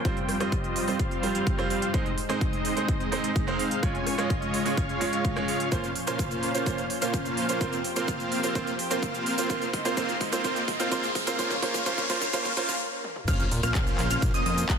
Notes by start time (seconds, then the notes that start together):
Already playing: F3 C5
0.04 F2 G3 C4 F4 G4 C5 G5, kick, closed hi-hat
0.17 closed hi-hat
0.29 cross-stick, open hi-hat
0.40 G3 C4 F4 C5 D#5, cross-stick, closed hi-hat
0.52 kick, closed hi-hat
0.64 closed hi-hat
0.76 open hi-hat
0.87 G3 C4 F4 C5 D#5, open hi-hat
0.99 G3 C4 F4 C5 F5, kick, closed hi-hat
1.11 closed hi-hat
1.23 G3 C4 F4 C5, open hi-hat
1.35 G3 C4 F4 C5 F5, closed hi-hat
1.47 kick, closed hi-hat
1.58 G3 C4 F4 C5, cross-stick, closed hi-hat
1.70 G3 C4 F4 C5 F5, open hi-hat
1.82 closed hi-hat
1.93 G#2 G#3 C4 D#4 C5 D#5, kick, closed hi-hat
2.06 closed hi-hat
2.18 open hi-hat
2.29 G#3 C4 D#4 C5 D#5, cross-stick, closed hi-hat
2.41 kick, closed hi-hat
2.53 closed hi-hat
2.65 open hi-hat
2.76 G#3 C4 D#4 C5 D#5, closed hi-hat
2.88 kick, closed hi-hat
3.00 G#3 C4 D#4 C5 D#5, closed hi-hat
3.12 G#3 C4 D#4 C5 D#5, open hi-hat
3.24 closed hi-hat
3.36 kick, closed hi-hat
3.47 G#3 C4 D#4 C5 F5, closed hi-hat
3.59 open hi-hat
3.71 closed hi-hat
3.82 C#3 G#3 C#4 F4 C#5 G#5, kick, closed hi-hat
3.95 closed hi-hat
4.07 cross-stick, open hi-hat
4.18 G#3 C#4 F4 C#5 D#5, cross-stick, closed hi-hat
4.30 kick, closed hi-hat
4.42 closed hi-hat
4.54 open hi-hat
4.65 G#3 C#4 F4 C#5 D#5, open hi-hat
4.77 G#3 C#4 F4 C#5 F5, kick, closed hi-hat
4.89 closed hi-hat
5.00 G#3 C#4 F4 C#5, open hi-hat
5.13 G#3 C#4 F4 C#5 F5, closed hi-hat
5.25 kick, closed hi-hat
5.36 G#3 C#4 F4 C#5, cross-stick, closed hi-hat
5.48 G#3 C#4 F4 C#5 F5, open hi-hat
5.60 closed hi-hat
5.71 A#2 F3 A#3 C#4 F4 C5 F5, kick, closed hi-hat, riser, shaker
5.84 closed hi-hat, shaker
5.96 open hi-hat
6.07 A#3 C#4 F4 C5 F5, closed hi-hat, shaker
6.19 kick, closed hi-hat, shaker
6.31 closed hi-hat, shaker
6.43 open hi-hat
6.54 A#3 C#4 F4 C5 F5, closed hi-hat, shaker
6.66 A#3 C#4 F4 C5, kick, closed hi-hat, shaker
6.78 closed hi-hat, shaker
6.90 open hi-hat
7.01 A#3 C#4 F4 C5 F5, closed hi-hat, shaker
7.14 kick, closed hi-hat, shaker
7.25 closed hi-hat, shaker
7.37 open hi-hat
7.48 A#3 C#4 F4 C5 F5, closed hi-hat, shaker
7.60 F2 A#3 C4 F4 G4 C5 F5, kick, closed hi-hat, shaker
7.73 closed hi-hat, shaker
7.84 open hi-hat
7.96 A#3 C4 F4 C5 F5, closed hi-hat, shaker
8.08 kick, closed hi-hat, shaker
8.20 closed hi-hat, shaker
8.32 open hi-hat
8.43 A#3 C4 F4 C5 F5, open hi-hat, shaker
8.55 A#3 C4 F4 C5 F5, kick, closed hi-hat, shaker
8.67 closed hi-hat, shaker
8.79 open hi-hat
8.90 A#3 C4 F4 C5 F5, closed hi-hat, shaker
9.03 kick, closed hi-hat, shaker
9.14 closed hi-hat, shaker
9.26 open hi-hat
9.37 A#3 C4 F4 C5 F5, closed hi-hat, shaker
9.49 G#2 G#3 A#3 C4 D#4 F4 C5 F5, kick, closed hi-hat, shaker
9.62 closed hi-hat, shaker
9.73 kick, open hi-hat
9.85 A#3 C4 F4 C5 F5, closed hi-hat, shaker
9.96 A#3 C4 F4 C5 F5, kick, closed hi-hat, shaker
10.09 closed hi-hat, shaker
10.21 kick, open hi-hat
10.32 A#3 C4 F4 C5 F5, closed hi-hat, shaker
10.44 A#3 C4 F4 C5 F5, kick, closed hi-hat, shaker
10.56 closed hi-hat, shaker
10.68 kick, open hi-hat
10.79 A#3 C4 F4 C5 F5, closed hi-hat, shaker
10.91 A#3 C4 F4 C5 F5, kick, closed hi-hat, shaker
11.03 closed hi-hat, shaker
11.15 kick, open hi-hat
11.26 A#3 C4 F4 C5 F5, closed hi-hat, shaker
11.38 C#3 A#3 C#4 F4 C5 C#5 F5, kick, closed hi-hat, shaker
11.51 kick, closed hi-hat, shaker
11.62 A#3 C#4 F4 C5 F5, kick, open hi-hat
11.74 kick, closed hi-hat, shaker
11.85 A#3 C#4 F4 C5 F5, kick, closed hi-hat, shaker
11.98 kick, closed hi-hat, shaker
12.09 A#3 C#4 F4 C5 F5, kick, open hi-hat
12.22 kick, open hi-hat, shaker
12.33 A#3 C#4 F4 C5 F5, kick, closed hi-hat, swell, shaker
12.45 kick, closed hi-hat, shaker
12.56 A#3 C#4 F4 C5 F5, kick, open hi-hat
12.69 kick, closed hi-hat, shaker
13.04 high tom
13.16 mid tom
13.28 A#1 C#3 A#3 C#4 F4 C5 F5 F6, kick, closed hi-hat, crash, sub drop, shaker
13.40 closed hi-hat, shaker
13.51 A#2, open hi-hat
13.63 A#1 A#3 C#4 F4 C5 F5 F6, cross-stick, closed hi-hat, shaker
13.75 A#1, kick, clap, closed hi-hat, shaker
13.87 closed hi-hat, shaker
13.98 A#1, clap, open hi-hat
14.10 A#3 C#4 F4 C5 F5 F6, closed hi-hat, shaker
14.22 A#1, kick, closed hi-hat, shaker
14.34 A#3 C#4 F4 C5 D#5 D#6, closed hi-hat, shaker
14.46 F2 A#3 C#4 F4 C5 D#5 D#6, open hi-hat
14.58 closed hi-hat, shaker
14.69 A#1, kick, clap, closed hi-hat, shaker